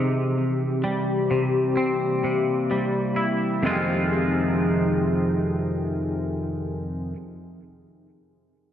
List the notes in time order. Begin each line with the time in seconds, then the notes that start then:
Already playing: C3 E3 C4 G4
0.84 G3
1.31 C3
1.77 A#3 C4
2.24 C3
2.71 G3
3.16 E4
3.61 F2 C3 D#3 F3 D#4 G#4
3.65 G#3 C4 F4